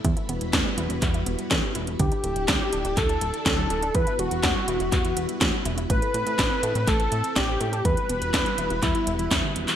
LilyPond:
<<
  \new Staff \with { instrumentName = "Analog synth lead" } { \time 4/4 \key e \minor \tempo 4 = 123 r1 | g'2 a'4 a'4 | b'8 fis'2. r8 | b'2 a'4 g'4 |
b'2 e'4. r8 | }
  \new Staff \with { instrumentName = "String machine" } { \time 4/4 \key e \minor <g b e' fis' b'>1 | <d' e' a'>1 | <g b e' fis' b'>1 | <c' a'>1 |
<g b e' fis' b'>1 | }
  \new Staff \with { instrumentName = "Synth arpeggio sound" } { \time 4/4 \key e \minor e16 e'16 b16 r16 a16 g16 e'16 r16 e16 e'16 b16 r16 a16 g16 e'16 r16 | d16 d'16 a16 r16 g16 fis16 d'16 d'16 d16 d'16 a16 r16 g16 fis16 d'16 d'16 | e16 e'16 b16 r16 a16 g16 e'16 e'16 e16 e'16 b16 r16 a16 g16 e'16 e'16 | a16 a'16 e'16 r16 d'16 c'16 a'16 a'16 a16 a'16 e'16 r16 d'16 c'16 a'16 a'16 |
e16 e'16 b16 r16 a16 g16 e'16 e'16 e16 e'16 b16 e16 e16 d16 e16 e16 | }
  \new Staff \with { instrumentName = "Analog synth bass" } { \clef bass \time 4/4 \key e \minor e,16 r16 e,,16 e,,16 e,16 r16 e,,16 e,,16 e,8 e,,16 r16 e,16 r16 e,,8 | d,16 r16 d,,16 d,,16 d,16 r16 d,,16 d,,16 d,8 d,,16 r16 d,8 d,,8 | e,16 r16 e,,16 e,,16 e,16 r16 e,,16 e,,16 e,8 e,,16 r16 e,16 r16 e,,8 | a,,16 r16 a,16 a,16 a,,16 r16 a,16 a,16 a,,8 a,16 r16 a,,8 a,8 |
e,16 r16 e,,16 e,,16 e,16 r16 e,,16 e,,16 e,16 r16 e,,8 e,16 r16 e,,16 r16 | }
  \new DrumStaff \with { instrumentName = "Drums" } \drummode { \time 4/4 <hh bd>16 hh16 hh16 hh16 <hc hh bd sn>8 hh16 hh16 <hc hh bd>16 hh16 hh16 hh16 <hc hh bd sn>8 hh16 hh16 | <hh bd>16 hh16 hh16 hh16 <hc hh bd sn>8 hh16 hh16 <hc hh bd>16 hh16 hh16 hh16 <hc hh bd sn>8 hh16 hh16 | <hh bd>16 hh16 hh16 hh16 <hc hh bd sn>8 hh16 hh16 <hc hh bd>16 hh16 hh16 hh16 <hc hh bd sn>8 hh16 hh16 | <hh bd>16 hh16 hh16 hh16 <hc hh bd sn>8 hh16 hh16 <hc hh bd>16 hh16 hh16 hh16 <hc hh bd sn>8 hh16 hh16 |
<hh bd>16 hh16 hh16 hh16 <hc hh bd sn>16 hh16 hh16 hh16 <hc hh bd>16 hh16 hh16 hh16 <hc hh bd sn>8 hh16 <hc hh>16 | }
>>